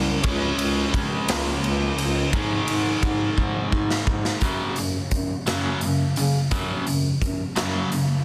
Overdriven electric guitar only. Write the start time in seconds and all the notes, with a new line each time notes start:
Already playing: F#2 C#3 F#3
0.23 C#3 G#3 C#4
2.33 G#2 D#3 G#3
4.42 F#2 C#3 F#3
4.78 F#2 C#3
5.46 F#2 C#3 F#3
5.83 F#2 C#3
6.17 F#2 C#3
6.51 F#2 C#3 F#3
6.87 F#2 C#3
7.56 F#2 C#3 F#3
7.92 F#2 C#3